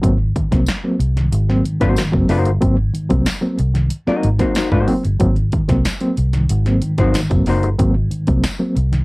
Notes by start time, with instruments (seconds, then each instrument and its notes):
0.02 fingered electric bass G#1, reed electric piano F#3 A#3 C4, kick, closed hi-hat
0.36 reed electric piano G#2 D#3, kick, closed hi-hat
0.52 fingered electric bass C2, reed electric piano F#3 A#3 C4, kick, snare, closed hi-hat
0.66 snare, closed hi-hat, tambourine
0.84 reed electric piano F#3 A#3 C4
0.99 fingered electric bass C2, closed hi-hat
1.16 reed electric piano G#2 D#3, snare, closed hi-hat
1.32 fingered electric bass G#1, closed hi-hat
1.49 reed electric piano F#3 A#3 C4, snare
1.65 reed electric piano G#2 D#3, closed hi-hat
1.80 fingered electric bass G#1, reed electric piano F#3 A#3 C4, hollow-body jazz guitar A#3 D#4 F#4 C5, kick, snare, closed hi-hat
1.96 reed electric piano G#2 D#3, snare, closed hi-hat, tambourine
2.12 fingered electric bass F#1, reed electric piano F#3 A#3 C4, kick
2.28 fingered electric bass F#1, reed electric piano A#3 C4, hollow-body jazz guitar A#3 D#4 F#4 C5, snare, open hi-hat
2.45 fingered electric bass G1, closed hi-hat
2.60 fingered electric bass G#1, reed electric piano F#3 A#3 C4, kick, closed hi-hat
2.94 reed electric piano G#2 D#3, closed hi-hat
3.09 fingered electric bass C2, reed electric piano F#3 A#3 C4, kick, closed hi-hat
3.26 snare, closed hi-hat, tambourine
3.41 reed electric piano F#3 A#3 C4
3.59 fingered electric bass C2, closed hi-hat
3.74 reed electric piano G#2 D#3, snare, closed hi-hat
3.90 closed hi-hat
4.07 reed electric piano F#3 A#3 C4, hollow-body jazz guitar A#3 D#4 F#4 D#5, muted fingered electric bass stroke, snare
4.23 fingered electric bass G#1, reed electric piano G#2 D#3, closed hi-hat
4.39 reed electric piano F#3 A#3 C4, hollow-body jazz guitar A#3 D#4 F#4 C5, kick, snare, closed hi-hat
4.55 hollow-body jazz guitar A#3 D#4 F#4 C5, snare, closed hi-hat, tambourine
4.72 fingered electric bass G#2, hollow-body jazz guitar A#3 D#4 F#4 C5, kick
4.88 reed electric piano F#3 A#3 C4, open hi-hat
5.05 fingered electric bass G1, closed hi-hat
5.19 fingered electric bass G#1, reed electric piano F#3 A#3 C4, kick, closed hi-hat
5.36 closed hi-hat
5.52 reed electric piano G#2 D#3, kick, closed hi-hat
5.68 fingered electric bass C2, reed electric piano F#3 A#3 C4, kick, snare, closed hi-hat
5.85 snare, closed hi-hat, tambourine
6.00 reed electric piano F#3 A#3 C4, closed hi-hat
6.17 fingered electric bass C2, closed hi-hat
6.33 reed electric piano G#2 D#3, snare, closed hi-hat
6.49 fingered electric bass G#1, closed hi-hat
6.66 reed electric piano F#3 A#3 C4, snare, closed hi-hat
6.82 reed electric piano G#2 D#3, closed hi-hat
6.98 fingered electric bass G#1, reed electric piano F#3 A#3 C4, hollow-body jazz guitar D#4 F#4 C5, kick, snare, closed hi-hat
7.02 hollow-body jazz guitar A#3
7.14 reed electric piano G#2 D#3, snare, closed hi-hat, tambourine
7.30 fingered electric bass F#1, reed electric piano F#3 A#3 C4, kick, closed hi-hat
7.46 fingered electric bass F#1, reed electric piano A#3 C4, hollow-body jazz guitar A#3 D#4 F#4 C5, snare, open hi-hat
7.63 fingered electric bass G1, closed hi-hat
7.78 fingered electric bass G#1, reed electric piano F#3 A#3 C4, kick, closed hi-hat
8.11 reed electric piano G#2 D#3, closed hi-hat
8.27 fingered electric bass C2, reed electric piano F#3 A#3 C4, kick, closed hi-hat
8.44 snare, closed hi-hat, tambourine
8.59 reed electric piano F#3 A#3 C4
8.76 fingered electric bass C2, closed hi-hat
8.92 reed electric piano G#2 D#3, snare, closed hi-hat